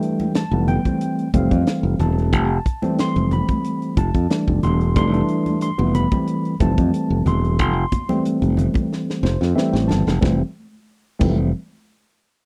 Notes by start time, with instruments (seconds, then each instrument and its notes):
Already playing: tine electric piano E3 G3 A3 D4 G5
0.02 closed hi-hat
0.19 closed hi-hat, high conga
0.34 tine electric piano A5, snare, closed hi-hat
0.51 fingered electric bass F1, tine electric piano E3 G3 A3 B3, high conga
0.68 tine electric piano G5, closed hi-hat, low conga
0.85 tine electric piano E3 G3 A3 C4, kick, closed hi-hat, high conga
1.01 closed hi-hat
1.19 closed hi-hat
1.34 fingered electric bass F1, tine electric piano E3 G3 A3 C4 F5, kick, closed hi-hat, high conga
1.51 fingered electric bass F2, kick, closed hi-hat
1.67 snare, closed hi-hat
1.83 fingered electric bass F1
1.99 fingered electric bass E1, tine electric piano A5, closed hi-hat, low conga
2.18 closed hi-hat
2.33 fingered electric bass F1, tine electric piano A5, kick, closed hi-hat, low conga
2.66 kick, closed hi-hat
2.82 tine electric piano E3 G3 A3 C4, closed hi-hat, high conga
2.98 tine electric piano C6, snare, closed hi-hat
3.16 fingered electric bass F1, closed hi-hat, high conga
3.31 tine electric piano B5, closed hi-hat, low conga
3.48 kick, closed hi-hat, high conga
3.64 closed hi-hat
3.82 closed hi-hat
3.97 fingered electric bass F1, tine electric piano A5, kick, closed hi-hat, high conga
4.14 fingered electric bass F2, kick, closed hi-hat
4.30 tine electric piano E3 G3 A3 D4, snare, closed hi-hat
4.48 fingered electric bass F1, kick
4.63 fingered electric bass E1, tine electric piano C6, closed hi-hat, low conga
4.81 closed hi-hat
4.96 fingered electric bass F1, tine electric piano E3 G3 A3 D4 C6, kick, closed hi-hat, low conga
5.13 tine electric piano E3 G3 A3 D4, closed hi-hat
5.28 closed hi-hat
5.46 closed hi-hat, high conga
5.61 tine electric piano C6, closed hi-hat
5.78 fingered electric bass F1, tine electric piano E3 G3 A3 B3, high conga
5.94 tine electric piano B5, closed hi-hat, low conga
6.11 tine electric piano E3 G3 A3 C4, kick, closed hi-hat, high conga
6.27 closed hi-hat
6.45 closed hi-hat
6.60 fingered electric bass F1, tine electric piano E3 G3 A3 C4 A5, kick, closed hi-hat, high conga
6.78 fingered electric bass F2, kick, closed hi-hat
6.94 closed hi-hat
7.10 fingered electric bass F1
7.26 fingered electric bass E1, tine electric piano C6, closed hi-hat, low conga
7.44 closed hi-hat
7.59 fingered electric bass F1, tine electric piano C6, kick, closed hi-hat, low conga
7.92 kick, closed hi-hat, high conga, low conga
8.09 tine electric piano E3 G3 A3 C4, closed hi-hat, high conga
8.25 closed hi-hat
8.42 fingered electric bass F1, closed hi-hat, high conga
8.57 closed hi-hat, low conga
8.74 kick, closed hi-hat, high conga
8.93 snare
9.10 snare
9.23 fingered electric bass F1, tine electric piano C5, snare, high conga
9.41 fingered electric bass F2, snare
9.55 tine electric piano E3 G3 A3 C4 E5, snare
9.73 fingered electric bass A1, tine electric piano G5, snare
9.88 fingered electric bass G1, tine electric piano A5, snare, low conga
10.07 fingered electric bass F1, snare
10.21 fingered electric bass F1, tine electric piano E3 G3 A3 C4, kick, snare, high conga
11.19 fingered electric bass F1, tine electric piano E3 G3 A3 C4, kick, crash, high conga